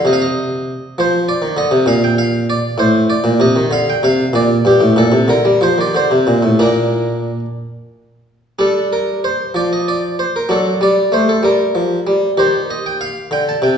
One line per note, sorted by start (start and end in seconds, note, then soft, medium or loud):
0.05 0.71 C3 medium
0.05 0.14 D#5 medium
0.13 0.20 F5 medium
0.22 0.99 D#5 loud
0.98 1.30 F3 medium
0.98 1.25 C5 medium
1.29 1.53 D5 loud
1.42 1.56 D#3 medium
1.57 1.71 D3 medium
1.57 1.83 D#5 loud
1.71 1.86 C3 medium
1.86 2.52 A#2 medium
1.86 2.02 F5 loud
2.04 2.18 G5 medium
2.18 2.44 F5 loud
2.50 2.75 D5 loud
2.78 3.11 A2 medium
2.78 3.10 C5 loud
3.10 3.36 D5 loud
3.24 3.39 A#2 medium
3.40 3.55 C3 medium
3.40 3.72 D#5 loud
3.56 3.70 D#3 medium
3.71 3.93 D3 medium
3.71 3.87 F5 loud
3.90 4.03 G5 medium
4.03 4.25 C3 medium
4.03 4.30 F5 loud
4.33 4.56 A#2 medium
4.33 4.66 D5 loud
4.65 4.80 G2 medium
4.65 4.93 G4 medium
4.80 4.95 A2 medium
4.96 5.11 A#2 medium
4.96 5.29 A4 loud
5.12 5.27 C3 medium
5.28 5.43 D3 medium
5.28 5.56 A#4 loud
5.45 5.60 G3 medium
5.61 5.76 F3 medium
5.61 5.78 C5 loud
5.78 5.93 D#3 medium
5.78 5.95 D5 medium
5.95 6.09 D3 medium
5.95 6.50 C5 medium
6.11 6.26 C3 medium
6.27 6.42 A#2 medium
6.42 6.58 A2 medium
6.59 7.30 A#2 medium
6.59 7.39 A#3 soft
6.59 7.40 D4 soft
6.59 7.45 A#4 medium
8.59 9.28 G3 medium
8.59 10.46 D4 soft
8.59 8.92 A4 medium
8.93 9.19 A#4 medium
9.24 9.51 C5 medium
9.54 10.23 F3 soft
9.54 9.71 D5 medium
9.73 9.88 D#5 medium
9.88 10.14 D5 medium
10.19 10.35 C5 medium
10.36 10.51 A#4 medium
10.49 10.72 F#3 soft
10.49 11.40 D4 soft
10.49 10.77 A4 medium
10.81 11.04 G3 medium
10.81 11.14 D5 medium
11.12 11.35 A3 medium
11.12 11.29 C5 medium
11.29 11.45 A4 medium
11.43 11.66 G3 medium
11.43 12.38 A#4 medium
11.75 11.98 F3 soft
12.07 12.29 G3 medium
12.37 13.05 D#3 medium
12.37 13.78 G4 soft
12.37 12.70 C5 medium
12.70 12.85 D#5 medium
12.86 13.01 G5 medium
13.01 13.27 F5 medium
13.31 13.54 D3 medium
13.31 13.48 G5 medium
13.49 13.63 A5 medium
13.62 13.78 C3 medium
13.62 13.78 G5 medium